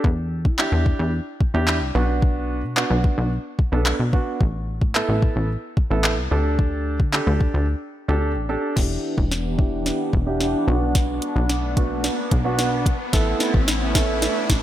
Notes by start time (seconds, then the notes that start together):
0.04 E2, kick
0.45 E3, kick
0.58 D4 E4 G4, clap
0.72 E2
0.86 kick
0.99 E2
1.41 kick
1.54 E2 D4 E4 G4
1.68 clap
1.81 C2
1.95 B1 B3 D4 F#4
2.22 kick
2.63 B2
2.77 B3 D4 F#4, clap
2.90 B1
3.04 kick
3.18 B1
3.59 kick
3.72 B1 B3 D4 A4
3.86 clap
4.00 B1
4.13 B3 D4 F#4, kick
4.41 A1, kick
4.81 A2, kick
4.95 B3 E4 A4, clap
5.09 A1
5.22 kick
5.36 A1
5.77 kick
5.90 A1 B3 E4 A4
6.04 clap
6.18 C2
6.31 D2 D4 G4 A4
6.59 kick
7.00 D3, kick
7.13 D4 G4 A4, clap
7.27 D2
7.41 kick
7.54 D2
8.08 D2 D4 G4 A4
8.36 A1
8.49 D4 G4 A4
8.76 E1 E3 B3 D4 E4 G4 F#5, kick, snare, crash, riser
9.18 E1, kick
9.31 snare
9.58 D4 E4 G4, kick
9.86 snare
10.13 E1, kick
10.26 D4 E4 G4
10.40 snare
10.67 B1 B3 D4 F#4
10.95 kick, snare, closed hi-hat
11.22 closed hi-hat
11.36 B1
11.49 snare, closed hi-hat
11.77 B3 D4 F#4, kick, closed hi-hat
12.04 snare, closed hi-hat
12.31 B1, kick, closed hi-hat
12.45 B3 D4 F#4
12.59 snare, closed hi-hat
12.86 kick, closed hi-hat
13.13 A1 A3 B3 E4 A4, kick, snare, closed hi-hat
13.40 snare, closed hi-hat
13.54 A1, kick
13.68 snare, closed hi-hat
13.95 B3 E4 A4, kick, snare, closed hi-hat
14.22 snare, closed hi-hat
14.50 A1, kick, snare, closed hi-hat